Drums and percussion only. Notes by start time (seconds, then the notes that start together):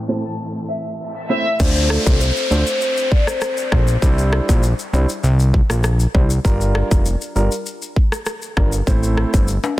1.60 kick, crash, maracas
1.76 maracas
1.90 cross-stick
2.07 kick, maracas
2.21 maracas
2.36 maracas
2.51 maracas
2.67 maracas
2.81 maracas
2.97 maracas
3.12 kick
3.27 cross-stick, maracas
3.41 cross-stick, maracas
3.57 maracas
3.72 kick, cross-stick
3.87 maracas
4.02 kick, maracas
4.18 maracas
4.33 cross-stick
4.49 kick, maracas
4.63 maracas
4.79 maracas
4.94 maracas
5.09 maracas
5.24 maracas
5.40 maracas
5.54 kick
5.70 cross-stick, maracas
5.83 cross-stick, maracas
6.00 maracas
6.15 kick
6.30 maracas
6.45 kick, maracas
6.61 maracas
6.75 cross-stick
6.91 kick, maracas
7.05 maracas
7.21 maracas
7.36 maracas
7.52 maracas
7.66 maracas
7.82 maracas
7.96 kick
8.12 cross-stick, maracas
8.26 cross-stick, maracas
8.42 maracas
8.57 kick, cross-stick
8.72 maracas
8.87 kick, maracas
9.03 maracas
9.17 cross-stick
9.34 kick, maracas
9.48 maracas
9.64 high timbale, maracas